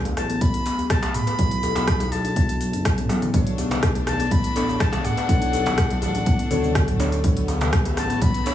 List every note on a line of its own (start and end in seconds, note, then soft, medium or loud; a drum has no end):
0.00 0.14 D2 medium
0.05 0.16 A3 medium
0.05 closed hi-hat soft
0.05 djembe tone medium
0.17 0.62 A1 medium
0.17 0.43 A5 loud
0.17 cross-stick medium
0.17 open hi-hat medium
0.17 djembe tone medium
0.17 shaker medium
0.29 0.40 B3 loud
0.29 closed hi-hat soft
0.29 shaker medium
0.41 0.53 B3 medium
0.41 0.90 B5 loud
0.41 kick loud
0.41 closed hi-hat medium
0.41 shaker soft
0.54 closed hi-hat soft
0.65 0.77 B3 medium
0.65 open hi-hat medium
0.65 djembe slap medium
0.65 shaker medium
0.78 0.89 B3 medium
0.78 djembe tone medium
0.78 shaker medium
0.90 1.16 A5 loud
0.90 kick loud
0.90 cross-stick loud
0.90 closed hi-hat medium
0.90 shaker soft
1.03 1.13 A3 medium
1.03 closed hi-hat medium
1.03 djembe slap loud
1.14 2.13 B5 loud
1.14 mid tom medium
1.14 open hi-hat medium
1.14 djembe tone medium
1.14 shaker medium
1.27 1.33 B4 medium
1.27 closed hi-hat soft
1.27 djembe slap medium
1.27 shaker medium
1.39 1.72 B1 loud
1.39 1.50 E4 medium
1.39 kick loud
1.39 closed hi-hat medium
1.39 mid tom medium
1.39 shaker soft
1.51 closed hi-hat soft
1.63 1.75 A4 medium
1.63 open hi-hat medium
1.63 djembe tone loud
1.63 shaker medium
1.75 2.73 B1 loud
1.75 1.86 B3 medium
1.75 closed hi-hat soft
1.75 djembe slap loud
1.75 shaker medium
1.88 kick loud
1.88 cross-stick loud
1.88 closed hi-hat medium
1.88 shaker soft
2.00 2.11 F#3 loud
2.00 closed hi-hat soft
2.00 djembe tone medium
2.12 2.85 A5 loud
2.12 open hi-hat medium
2.12 djembe tone loud
2.12 shaker loud
2.25 2.35 D4 loud
2.25 closed hi-hat soft
2.25 shaker soft
2.36 2.48 B3 loud
2.36 kick loud
2.36 closed hi-hat medium
2.36 shaker soft
2.49 closed hi-hat soft
2.61 2.68 F#3 medium
2.61 open hi-hat medium
2.61 shaker medium
2.73 2.93 F#1 medium
2.73 2.84 D4 medium
2.73 closed hi-hat soft
2.73 shaker medium
2.85 kick loud
2.85 cross-stick loud
2.85 closed hi-hat medium
2.85 shaker soft
2.98 3.30 A1 medium
2.98 3.04 B3 medium
2.98 closed hi-hat soft
2.98 mid tom medium
3.09 3.21 B3 medium
3.09 open hi-hat medium
3.09 high tom medium
3.09 djembe slap medium
3.09 shaker medium
3.22 3.33 B3 medium
3.22 closed hi-hat soft
3.22 mid tom medium
3.22 shaker soft
3.34 4.28 B1 loud
3.34 8.54 A3 medium
3.34 3.45 B3 medium
3.34 4.53 B3 medium
3.34 4.53 D4 medium
3.34 7.23 D4 medium
3.34 4.53 A4 medium
3.34 4.53 C#5 medium
3.34 kick loud
3.34 closed hi-hat medium
3.34 mid tom medium
3.34 muted conga medium
3.34 high conga loud
3.34 low conga medium
3.34 shaker soft
3.47 closed hi-hat soft
3.58 3.70 B3 loud
3.58 open hi-hat medium
3.58 muted conga soft
3.58 djembe tone medium
3.58 shaker medium
3.70 3.82 B4 medium
3.70 closed hi-hat soft
3.70 djembe slap loud
3.70 high conga medium
3.70 low conga medium
3.70 shaker medium
3.83 kick loud
3.83 cross-stick loud
3.83 closed hi-hat medium
3.83 muted conga medium
3.83 shaker soft
3.95 4.06 A3 medium
3.95 closed hi-hat soft
3.95 djembe tone medium
4.07 4.33 A5 loud
4.07 cross-stick medium
4.07 open hi-hat medium
4.07 djembe tone loud
4.07 high conga medium
4.07 shaker loud
4.19 4.30 B3 loud
4.19 closed hi-hat soft
4.19 muted conga soft
4.19 shaker medium
4.31 4.77 A1 loud
4.31 4.43 B3 medium
4.31 4.82 B5 loud
4.31 kick loud
4.31 closed hi-hat medium
4.31 high conga loud
4.31 low conga loud
4.31 shaker soft
4.44 closed hi-hat soft
4.44 muted conga medium
4.56 4.67 B3 medium
4.56 5.26 B3 medium
4.56 5.26 D4 medium
4.56 5.26 A4 medium
4.56 5.26 C#5 loud
4.56 open hi-hat medium
4.56 djembe slap medium
4.56 shaker loud
4.68 4.79 B3 medium
4.68 muted conga soft
4.68 djembe tone medium
4.68 shaker medium
4.80 5.06 A5 loud
4.80 kick loud
4.80 cross-stick loud
4.80 closed hi-hat medium
4.80 high conga medium
4.80 shaker soft
4.92 5.03 A3 medium
4.92 closed hi-hat soft
4.92 djembe slap loud
4.92 high conga medium
4.92 low conga loud
5.04 6.01 F#5 loud
5.04 mid tom medium
5.04 open hi-hat medium
5.04 muted conga soft
5.04 djembe tone medium
5.04 shaker medium
5.17 5.23 B4 medium
5.17 closed hi-hat soft
5.17 djembe slap medium
5.17 shaker medium
5.28 5.99 B1 loud
5.28 6.48 B3 medium
5.28 6.48 D4 medium
5.28 5.40 E4 medium
5.28 6.48 A4 medium
5.28 6.48 C#5 loud
5.28 kick loud
5.28 closed hi-hat medium
5.28 muted conga medium
5.28 high conga loud
5.28 low conga medium
5.28 shaker soft
5.42 closed hi-hat soft
5.52 5.65 A4 medium
5.52 open hi-hat medium
5.52 muted conga soft
5.52 djembe tone medium
5.52 shaker medium
5.66 5.76 B3 medium
5.66 closed hi-hat soft
5.66 djembe slap loud
5.66 high conga medium
5.66 low conga medium
5.66 shaker medium
5.77 kick loud
5.77 cross-stick loud
5.77 closed hi-hat medium
5.77 muted conga medium
5.77 shaker soft
5.90 6.01 F#3 loud
5.90 closed hi-hat soft
5.90 djembe tone medium
6.01 6.48 A1 medium
6.01 6.71 F#5 medium
6.01 open hi-hat medium
6.01 high conga medium
6.01 djembe tone loud
6.01 shaker loud
6.14 6.25 D4 loud
6.14 closed hi-hat soft
6.14 muted conga soft
6.14 shaker medium
6.26 6.38 B3 loud
6.26 kick loud
6.26 closed hi-hat medium
6.26 shaker soft
6.39 closed hi-hat soft
6.39 muted conga soft
6.50 7.94 D2 loud
6.50 6.97 B3 medium
6.50 6.97 D4 medium
6.50 6.63 A4 medium
6.50 6.97 A4 medium
6.50 6.97 C#5 loud
6.50 open hi-hat loud
6.50 high conga loud
6.50 low conga medium
6.50 shaker loud
6.63 6.74 F#4 medium
6.63 muted conga soft
6.63 high conga medium
6.63 low conga loud
6.63 shaker medium
6.75 kick loud
6.75 cross-stick loud
6.75 closed hi-hat medium
6.75 high conga medium
6.75 shaker soft
6.88 6.99 F#3 loud
6.88 closed hi-hat soft
6.88 mid tom medium
7.00 7.17 B3 loud
7.00 7.17 D4 medium
7.00 7.17 A4 medium
7.00 7.17 C#5 loud
7.00 open hi-hat medium
7.00 muted conga medium
7.00 djembe slap medium
7.00 shaker loud
7.12 7.23 D4 loud
7.12 closed hi-hat soft
7.12 shaker medium
7.24 8.54 B3 medium
7.24 8.43 B3 medium
7.24 7.36 B3 medium
7.24 8.43 D4 medium
7.24 8.43 A4 medium
7.24 8.43 C#5 loud
7.24 kick loud
7.24 closed hi-hat medium
7.24 mid tom medium
7.24 muted conga soft
7.24 high conga loud
7.24 low conga medium
7.24 shaker soft
7.37 closed hi-hat soft
7.48 7.60 B3 loud
7.48 open hi-hat medium
7.48 muted conga soft
7.48 djembe tone loud
7.48 shaker medium
7.61 7.72 B4 medium
7.61 closed hi-hat soft
7.61 djembe slap loud
7.61 high conga medium
7.61 low conga loud
7.61 shaker medium
7.73 kick loud
7.73 cross-stick loud
7.73 closed hi-hat medium
7.73 shaker soft
7.85 7.96 A3 medium
7.85 closed hi-hat soft
7.85 djembe tone loud
7.97 8.43 A1 medium
7.97 8.23 A5 loud
7.97 cross-stick medium
7.97 open hi-hat medium
7.97 high conga medium
7.97 djembe tone loud
7.97 shaker loud
8.10 8.21 B3 loud
8.10 closed hi-hat soft
8.10 muted conga soft
8.10 shaker medium
8.21 8.33 B3 medium
8.21 8.54 B5 loud
8.21 kick loud
8.21 closed hi-hat medium
8.21 high conga loud
8.21 low conga loud
8.21 shaker soft
8.34 closed hi-hat soft
8.34 muted conga medium
8.46 8.54 B3 medium
8.46 8.54 D4 medium
8.46 8.54 A4 medium
8.46 8.54 C#5 loud
8.46 open hi-hat medium
8.46 djembe slap medium
8.46 shaker loud